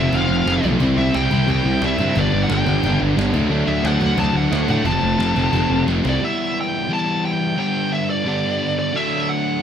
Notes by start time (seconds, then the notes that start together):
Already playing: F2 C3 F3 A3 C4 E5
0.13 F1 F2 C3 F3 A3 C4 F5, cajon bass
0.29 F1
0.45 F1 F2 C3 F3 A3 C4, cajon slap
0.63 B1 F2 C3 F3 A3 C4, cajon bass
0.80 C2 C3 G3 C4 E4, cajon bass
0.97 C2 E5
1.14 C2 C3 G3 C4 E4 G5, cajon slap
1.31 C2 C3 G3 C4 E4, cajon bass
1.48 C2 C3 G3 C4 E4 G5, cajon bass
1.65 C2
1.82 C2 C3 G3 C4 E4, cajon slap
1.86 E5
1.98 G2 C3 G3 C4 E4, cajon bass
2.15 G1 G2 D3 G3 B3 D4, cajon bass
2.20 D5
2.33 G1
2.43 F#5
2.49 G1 G2 D3 G3 B3 D4 G5, cajon slap
2.66 G1 G2 D3 G3 B3 D4, cajon bass
2.83 G1 G2 D3 G3 B3 D4, cajon bass
3.01 G1
3.16 G1 G2 D3 G3 B3 D4, cajon slap
3.33 D2 D3 F#3 A3 D4, cajon bass
3.50 D2 D3 F#3 A3 D4
3.67 D2 E5
3.84 D2 D3 F#3 A3 D4 F#5, cajon slap
4.00 D2 D3 F#3 A3 D4, cajon bass
4.17 D2 D3 F#3 A3 D4 A5, cajon bass
4.34 D2 F#5
4.51 D2 D3 F#3 A3 D4, cajon slap
4.68 A2 D3 F#3 A3 D4 F#5, cajon bass
4.85 F1 F2 C3 F3 A3 C4 A5, cajon bass
5.03 F1
5.18 F1 F2 C3 F3 A3 C4, cajon slap
5.36 F1 F2 C3 F3 A3 C4, cajon bass
5.52 F1 F2 C3 F3 A3 C4, cajon bass, cajon slap
5.70 F1
5.86 F1 F2 C3 F3 A3 C4, cajon slap
6.03 C2 F2 C3 F3 A3 C4, cajon slap
6.09 D5
6.20 E3 G3 B3 E4
6.24 E5
6.61 G5
6.88 E3 G3 B3 E4
6.93 A5
7.25 G5
7.56 G2 D3 G3 B3 D4 G5
7.93 E5
8.10 D5
8.25 G2 D3 G3 B3 D4
8.79 D5
8.93 D3 F#3 A3 D4 E5
9.29 F#5